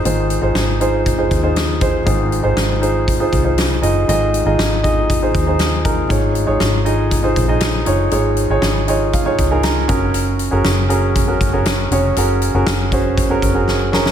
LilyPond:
<<
  \new Staff \with { instrumentName = "Grand piano" } { \time 4/4 \key aes \mixolydian \tempo 4 = 119 << { r1 | r1 | r1 | r1 |
r4. ees''8 f''8. aes''16 bes''8 aes''8 | r1 | r1 | } \\ { <ees' f' aes' c''>8 r16 <ees' f' aes' c''>8 r16 <ees' f' aes' c''>8 r16 <ees' f' aes' c''>16 r16 <ees' f' aes' c''>8 r16 <ees' f' aes' c''>16 r16 | <ees' f' aes' c''>8 r16 <ees' f' aes' c''>8 r16 <ees' f' aes' c''>8 r16 <ees' f' aes' c''>16 r16 <ees' f' aes' c''>8 r16 <ees' f' aes' ees''>16 r16 | <ees' f' aes' ees''>8 r16 <ees' f' aes' ees''>8 r16 <ees' f' aes' ees''>8 r16 <ees' f' aes' c''>16 r16 <ees' f' aes' c''>8 r16 <ees' f' aes' bes'>16 r16 | <ees' f' aes' des''>8 r16 <ees' f' aes' des''>8 r16 <ees' f' aes' ees''>8 r16 <ees' f' aes' c''>16 r16 <ees' f' aes' ees''>8 r16 <ees' f' aes' des''>16 r16 |
<ees' f' aes' des''>8 r16 <ees' f' aes' des''>8 r16 <ees' f' aes' des''>8 r16 <ees' f' aes' des''>16 r16 <ees' f' aes' bes'>8 r16 <des' ges' aes' bes'>8~ | <des' ges' aes' bes'>8 r16 <des' ges' aes' bes'>8 r16 <des' ges' aes' bes'>8 r16 <des' ges' aes' bes'>16 r16 <des' ges' aes' bes'>8 r16 <des' ges' aes' des''>16 r16 | <des' ges' aes' bes'>8 r16 <des' ges' aes' bes'>8 r16 <des' ges' aes' c''>8 r16 <des' ges' aes' bes'>16 r16 <des' ges' aes' bes'>8 r16 <des' ges' aes' bes'>16 r16 | } >> }
  \new Staff \with { instrumentName = "Grand piano" } { \clef bass \time 4/4 \key aes \mixolydian <aes, ees>4. r2 r8 | <aes, ees>4. r2 r8 | <aes, ees>4. r2 r8 | <aes, aes>4. r2 r8 |
<aes, aes>4. r2 des8~ | des4 r2 r8 des8~ | des4 r2. | }
  \new Staff \with { instrumentName = "Fingered electric bass" } { \clef bass \time 4/4 \key aes \mixolydian aes,,8. aes,,16 aes,,4. ees,4. | aes,,8. aes,,16 aes,,4. c,4 ges,,8 | aes,,8. aes,,16 r4. ees,4. | aes,,8. aes,,16 aes,,4. bes,,4 ges,,8 |
aes,,8. aes,,16 aes,,4. des,4 ges,,8~ | ges,,8. ges,,16 ges,,4. ges,,4 f,,8 | ges,,8. ges,,16 r4. ges,,4. | }
  \new DrumStaff \with { instrumentName = "Drums" } \drummode { \time 4/4 hh8 hh8 <hh sn>8 hh8 <hh bd>8 <hh bd>8 <hh sn>8 <hh bd>8 | <hh bd>8 hh8 <hh sn>8 hh8 <hh bd>8 <hh bd>8 <hh sn>8 hh8 | hh8 hh8 <hh sn>8 <hh bd>8 <hh bd>8 <hh bd>8 <hh sn>8 <hh bd>8 | <hh bd>8 hh8 <hh sn>8 hh8 <hh bd>8 <hh bd>8 <hh sn>8 hh8 |
hh8 hh8 <hh sn>8 hh8 <hh bd>8 <hh bd>8 <hh sn>8 <hh bd>8 | hh8 hh8 <hh sn>8 hh8 <hh bd>8 <hh bd>8 <hh sn>8 hh8 | hh8 hh8 <hh sn>8 <hh bd>8 <hh bd>8 <hh bd>8 sn8 sn16 sn16 | }
>>